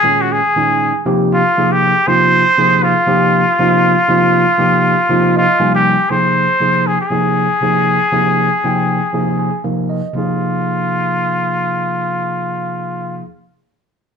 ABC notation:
X:1
M:4/4
L:1/16
Q:"Swing 16ths" 1/4=119
K:Fm
V:1 name="Muted trumpet"
A _G A6 z2 F3 =G3 | c6 F8- F2- | F8- F2 F3 G3 | c6 A A8- A- |
A12 z4 | F16- | F16 |]
V:2 name="Tine electric piano"
z16 | z16 | z8 z2 e2 a4 | z16 |
z8 z2 a2 f2 e2 | z16 | z16 |]
V:3 name="Tine electric piano"
[B,,E,A,DA]2 z2 [B,,E,A,DE]2 z2 [C,F,B,EG]2 z2 [C,F,B,EA]2 z2 | [C,F,B,EF]2 z2 [C,F,B,EA]2 z2 [C,F,B,EG]2 z2 [C,F,B,EF]2 z2 | [C,F,B,EF]2 z2 [C,F,B,EG]2 z2 [C,F,B,EF]2 z2 [C,F,G,B,E]2 z2 | [C,F,B,EA]2 z2 [C,F,B,EA]2 z2 [C,F,B,EA]2 z2 [C,F,B,EA]2 z2 |
[C,F,B,EA]2 z2 [C,F,B,Eg]2 z2 [C,F,B,EA]2 z2 [C,F,B,EB]2 z2 | [C,F,B,EA]16- | [C,F,B,EA]16 |]